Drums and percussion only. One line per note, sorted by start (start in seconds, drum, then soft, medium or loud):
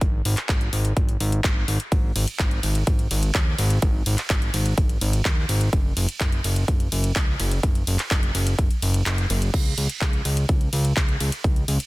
0.01 kick loud
0.01 closed hi-hat medium
0.25 open hi-hat loud
0.37 clap soft
0.37 closed hi-hat medium
0.49 kick loud
0.49 clap loud
0.49 closed hi-hat medium
0.61 closed hi-hat soft
0.73 open hi-hat loud
0.85 closed hi-hat soft
0.97 kick loud
0.97 closed hi-hat medium
1.09 closed hi-hat soft
1.20 open hi-hat loud
1.32 closed hi-hat medium
1.44 kick loud
1.44 clap loud
1.44 closed hi-hat medium
1.68 open hi-hat loud
1.80 closed hi-hat medium
1.92 kick loud
1.92 closed hi-hat medium
1.92 ride medium
2.16 open hi-hat loud
2.16 ride medium
2.28 closed hi-hat medium
2.39 kick loud
2.39 clap loud
2.39 closed hi-hat medium
2.51 closed hi-hat soft
2.63 open hi-hat loud
2.63 ride medium
2.75 closed hi-hat medium
2.87 kick loud
2.87 closed hi-hat medium
2.87 ride medium
2.99 closed hi-hat soft
3.11 open hi-hat loud
3.11 ride medium
3.23 closed hi-hat medium
3.35 kick loud
3.35 clap loud
3.35 closed hi-hat medium
3.58 open hi-hat loud
3.58 ride medium
3.70 closed hi-hat medium
3.82 kick loud
3.82 closed hi-hat medium
3.82 ride medium
4.06 open hi-hat loud
4.06 ride medium
4.18 clap soft
4.18 closed hi-hat medium
4.30 kick loud
4.30 clap loud
4.30 closed hi-hat medium
4.30 ride medium
4.42 closed hi-hat soft
4.54 open hi-hat loud
4.54 ride medium
4.66 closed hi-hat medium
4.78 kick loud
4.78 closed hi-hat medium
4.78 ride medium
4.89 closed hi-hat soft
5.01 open hi-hat loud
5.01 ride medium
5.13 closed hi-hat medium
5.25 kick loud
5.25 clap loud
5.25 closed hi-hat medium
5.25 ride medium
5.49 open hi-hat loud
5.49 ride medium
5.61 closed hi-hat medium
5.73 kick loud
5.73 closed hi-hat medium
5.73 ride medium
5.97 open hi-hat loud
5.97 ride medium
6.09 closed hi-hat medium
6.21 kick loud
6.21 clap loud
6.21 closed hi-hat medium
6.21 ride medium
6.32 closed hi-hat soft
6.44 open hi-hat loud
6.44 ride medium
6.56 closed hi-hat medium
6.68 kick loud
6.68 closed hi-hat medium
6.68 ride medium
6.80 closed hi-hat soft
6.92 open hi-hat loud
6.92 ride medium
7.04 closed hi-hat medium
7.16 kick loud
7.16 clap loud
7.16 closed hi-hat medium
7.16 ride medium
7.40 open hi-hat loud
7.40 ride medium
7.51 closed hi-hat medium
7.63 kick loud
7.63 closed hi-hat medium
7.63 ride medium
7.75 closed hi-hat soft
7.87 open hi-hat loud
7.87 ride medium
7.99 clap soft
7.99 closed hi-hat medium
8.11 kick loud
8.11 clap loud
8.11 closed hi-hat medium
8.11 ride medium
8.23 closed hi-hat soft
8.35 open hi-hat loud
8.35 ride medium
8.47 closed hi-hat medium
8.59 kick loud
8.59 closed hi-hat medium
8.59 ride medium
8.71 closed hi-hat soft
8.82 open hi-hat loud
8.82 ride medium
8.94 closed hi-hat medium
9.06 clap loud
9.06 closed hi-hat medium
9.06 ride medium
9.18 closed hi-hat soft
9.30 open hi-hat loud
9.30 ride medium
9.42 closed hi-hat medium
9.54 kick loud
9.54 closed hi-hat medium
9.54 ride medium
9.54 crash loud
9.66 closed hi-hat soft
9.78 open hi-hat loud
9.78 ride medium
9.90 closed hi-hat medium
10.01 kick loud
10.01 clap loud
10.01 closed hi-hat medium
10.01 ride medium
10.13 closed hi-hat soft
10.25 open hi-hat loud
10.25 ride medium
10.37 closed hi-hat medium
10.49 kick loud
10.49 closed hi-hat medium
10.49 ride medium
10.61 closed hi-hat soft
10.73 open hi-hat loud
10.73 ride medium
10.85 closed hi-hat medium
10.97 kick loud
10.97 clap loud
10.97 closed hi-hat medium
10.97 ride medium
11.09 closed hi-hat soft
11.20 open hi-hat loud
11.20 ride medium
11.32 closed hi-hat medium
11.44 kick loud
11.44 closed hi-hat medium
11.44 ride medium
11.56 closed hi-hat soft
11.68 open hi-hat loud
11.68 ride medium
11.80 closed hi-hat medium